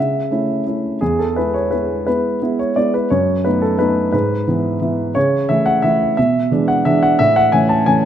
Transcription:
0.00 0.31 C#3 soft
0.00 1.01 E5 medium
0.31 0.63 A3 soft
0.31 0.63 C#4 soft
0.31 0.63 E4 soft
0.67 0.98 A3 soft
0.67 0.98 C#4 soft
0.67 0.98 E4 soft
1.01 1.36 E2 medium
1.01 1.19 G#4 medium
1.19 1.37 A4 medium
1.36 1.69 G#3 soft
1.36 1.69 B3 soft
1.36 1.69 E4 soft
1.36 1.54 B4 medium
1.54 1.72 C#5 medium
1.71 2.03 G#3 soft
1.71 2.03 B3 soft
1.71 2.04 E4 soft
1.71 2.05 B4 medium
2.07 2.38 G#3 soft
2.07 2.39 B3 soft
2.07 2.39 E4 soft
2.07 2.59 B4 medium
2.42 2.73 G#3 soft
2.42 2.73 B3 soft
2.42 2.74 E4 soft
2.59 2.77 C#5 medium
2.76 3.08 G#3 soft
2.76 3.08 B3 soft
2.76 3.08 E4 soft
2.76 2.94 D5 medium
2.94 3.11 B4 medium
3.10 3.45 F#2 medium
3.10 3.45 C#5 medium
3.45 3.76 A3 soft
3.45 3.77 B3 soft
3.45 3.77 D#4 soft
3.45 3.62 B4 medium
3.62 3.79 A4 medium
3.79 4.10 A3 soft
3.79 4.11 B3 soft
3.79 4.11 D#4 soft
3.79 4.11 B4 medium
4.12 4.46 G#2 medium
4.12 5.15 B4 medium
4.48 4.78 E3 soft
4.48 4.79 B3 soft
4.48 4.79 E4 soft
4.81 5.12 E3 soft
4.81 5.13 B3 soft
4.81 5.13 E4 soft
5.15 5.49 C#3 medium
5.15 5.49 C#5 medium
5.49 5.80 E3 soft
5.49 5.80 A3 soft
5.49 5.80 E4 soft
5.49 5.66 E5 medium
5.66 5.83 F#5 medium
5.82 6.14 E3 soft
5.82 6.14 A3 soft
5.82 6.15 E4 soft
5.82 6.16 E5 medium
6.17 6.51 B2 medium
6.17 6.68 E5 medium
6.51 6.82 E3 soft
6.51 6.82 G#3 soft
6.51 6.83 D4 medium
6.68 6.85 F#5 medium
6.85 7.16 E3 soft
6.85 7.16 G#3 soft
6.85 7.16 D4 soft
6.85 7.02 E5 medium
7.03 7.19 F#5 medium
7.19 7.52 A2 medium
7.19 7.36 E5 medium
7.36 7.53 F#5 medium
7.52 7.83 E3 soft
7.52 7.84 A3 soft
7.52 7.84 C#4 soft
7.52 7.69 G#5 medium
7.69 7.86 A5 medium
7.86 8.05 E3 soft
7.86 8.05 A3 soft
7.86 8.05 C#4 medium
7.86 8.05 G#5 medium

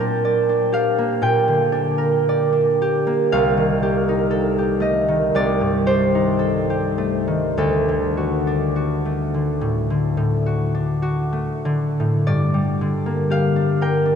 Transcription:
0.00 1.21 A#2 medium
0.00 0.97 A#3 soft
0.00 0.48 D4 medium
0.00 1.97 A#4 soft
0.00 1.21 G5 medium
0.25 2.28 D5 medium
0.49 1.71 D4 soft
0.72 2.80 G4 soft
0.72 1.60 F5 medium
0.98 3.06 A#3 soft
1.22 3.34 A#2 medium
1.22 5.13 G5 medium
1.48 3.34 D3 soft
1.72 2.51 D4 soft
1.98 3.33 A#4 soft
2.29 3.36 D5 medium
2.53 3.34 D4 soft
2.82 3.81 G4 medium
3.07 3.36 A#3 soft
3.32 5.34 C2 medium
3.32 5.92 F5 loud
3.57 5.07 D#3 soft
3.83 4.57 G4 soft
4.09 6.14 D#4 soft
4.31 6.38 A4 medium
4.58 5.86 G4 soft
4.80 6.97 A3 soft
4.80 7.60 D#5 medium
5.08 7.26 D#3 soft
5.35 7.61 C2 medium
5.35 6.25 D5 medium
5.61 7.61 G2 soft
5.86 6.69 G4 soft
5.86 7.61 C5 medium
6.15 7.62 D#4 soft
6.39 7.57 A4 medium
6.70 7.61 G4 soft
6.98 9.04 A3 soft
7.28 7.61 D#3 soft
7.57 11.47 D2 medium
7.57 11.48 A4 medium
7.89 9.33 D3 soft
8.17 8.75 F#4 soft
8.47 10.73 D4 soft
8.76 10.45 F#4 soft
9.05 11.31 A3 soft
9.34 9.89 D3 soft
9.61 10.16 A2 soft
9.90 11.64 D3 soft
10.17 11.99 A2 soft
10.46 11.01 F#4 soft
10.75 13.55 D4 soft
11.02 12.31 F#4 soft
11.33 12.31 A3 soft
11.65 12.31 D3 soft
12.00 12.32 A2 soft
12.27 14.15 G2 medium
12.27 14.15 D5 medium
12.54 14.15 G3 soft
12.81 14.15 D3 soft
13.06 14.15 A#3 soft
13.30 14.15 G4 soft
13.30 14.15 F5 medium
13.56 14.04 D4 soft
13.81 14.15 A#4 soft
13.81 14.15 G5 medium
14.06 14.15 D4 soft

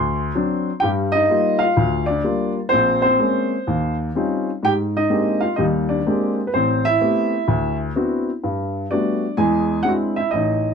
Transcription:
0.00 0.29 D2 medium
0.00 0.71 C6 medium
0.35 0.69 F#3 soft
0.35 0.69 C4 soft
0.35 0.69 D4 medium
0.80 1.24 G2 medium
0.80 1.24 G3 medium
0.80 0.89 G4 medium
0.80 0.87 G5 medium
1.12 1.59 D#4 medium
1.12 1.62 D#5 medium
1.30 1.63 G3 soft
1.30 1.63 A#3 soft
1.30 1.62 F4 soft
1.59 2.04 F5 medium
1.63 2.07 F4 medium
1.77 2.18 D2 medium
2.06 2.52 D5 medium
2.10 2.54 D4 medium
2.24 2.58 G3 soft
2.24 2.58 A#3 soft
2.24 2.58 F4 medium
2.69 3.14 A#1 medium
2.69 3.02 C4 medium
2.69 3.00 C5 medium
3.02 3.18 C4 medium
3.02 3.94 C5 medium
3.19 3.53 G#3 soft
3.19 3.53 A#3 soft
3.19 3.53 C4 soft
3.19 3.53 C#4 soft
3.67 4.08 D#2 medium
4.15 4.49 G3 soft
4.15 4.49 C4 soft
4.15 4.49 C#4 soft
4.15 4.49 D#4 soft
4.15 4.49 F4 medium
4.63 5.04 G#2 medium
4.63 4.71 G4 medium
4.63 4.72 G5 medium
4.97 5.40 D#4 medium
4.97 5.40 D#5 medium
5.10 5.43 G#3 soft
5.10 5.43 A#3 soft
5.10 5.43 C4 soft
5.10 5.43 D4 soft
5.10 5.44 G4 soft
5.41 5.56 F4 medium
5.41 5.57 F5 medium
5.56 5.99 D#2 medium
5.56 5.99 G3 medium
5.56 5.65 D#4 medium
5.56 5.63 D#5 medium
5.89 6.05 D4 medium
5.89 6.33 D5 medium
6.06 6.39 G#3 medium
6.06 6.39 A#3 soft
6.06 6.39 C4 soft
6.06 6.39 D4 soft
6.06 6.39 G4 medium
6.47 6.51 B4 medium
6.54 6.94 A1 medium
6.54 6.84 C4 medium
6.54 6.83 C5 medium
6.85 7.76 E4 medium
6.85 7.76 E5 loud
7.01 7.34 A3 soft
7.01 7.34 B3 soft
7.01 7.34 C4 soft
7.01 7.34 G4 soft
7.48 7.89 D2 medium
7.96 8.29 B3 soft
7.96 8.29 C4 soft
7.96 8.29 D4 soft
7.96 8.29 E4 soft
7.96 8.29 F#4 medium
8.44 8.84 G2 medium
8.91 9.24 G3 soft
8.91 9.24 A3 soft
8.91 9.24 B3 soft
8.91 9.36 D4 medium
8.91 9.24 F#4 medium
8.91 9.39 D5 medium
9.37 9.79 E2 medium
9.37 9.79 G#3 medium
9.37 9.83 G#4 medium
9.37 9.86 G#5 medium
9.83 10.18 G#3 soft
9.83 10.18 C4 soft
9.83 10.18 D4 soft
9.83 10.19 E4 medium
9.83 9.90 F#5 medium
9.88 9.95 F#4 medium
10.16 10.33 E4 medium
10.16 10.31 E5 medium
10.31 10.74 A1 medium
10.31 10.74 D#5 medium
10.36 10.74 D#4 medium

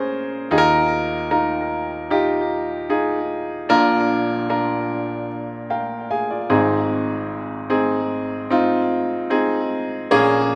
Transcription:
0.00 0.46 A#1 medium
0.00 0.46 A#2 medium
0.00 0.52 C#4 medium
0.00 0.52 G#4 medium
0.00 0.53 A#4 loud
0.00 0.47 C5 medium
0.51 3.67 D#2 medium
0.51 3.67 D#3 medium
0.51 1.27 D#4 loud
0.51 1.27 F4 medium
0.51 0.58 G#4 medium
0.58 1.30 A#4 loud
1.31 2.07 D#4 medium
1.31 2.07 F4 medium
1.31 2.07 A#4 medium
2.10 2.87 D#4 medium
2.10 2.87 F4 medium
2.10 2.87 G4 medium
2.90 3.66 D#4 medium
2.90 3.66 F4 medium
2.90 3.66 G#4 medium
3.69 6.46 A#1 medium
3.69 6.46 A#2 medium
3.69 4.46 D4 loud
3.69 4.46 F4 loud
3.69 4.46 A#4 loud
4.49 5.26 D4 medium
4.49 5.26 F4 medium
4.49 5.26 A#4 medium
5.70 6.09 A#4 medium
5.70 6.08 F5 medium
5.70 6.08 G5 medium
6.11 6.30 G#4 medium
6.11 6.30 F5 medium
6.11 6.87 G#5 medium
6.31 6.69 F4 medium
6.31 6.69 D5 medium
6.50 9.66 G#1 medium
6.50 9.66 G#2 medium
6.50 7.64 C4 medium
6.50 7.64 D#4 medium
6.50 7.64 G#4 medium
7.70 8.46 C4 medium
7.70 8.46 D#4 medium
7.70 8.46 G#4 medium
8.50 9.26 C4 medium
8.50 9.27 D#4 medium
8.50 9.27 F4 loud
9.30 10.06 C4 medium
9.30 10.07 D#4 medium
9.30 10.07 G#4 medium
10.11 10.55 A#1 medium
10.11 10.55 A#2 medium
10.11 10.55 A#3 loud
10.11 10.55 C#4 medium
10.11 10.55 G#4 loud

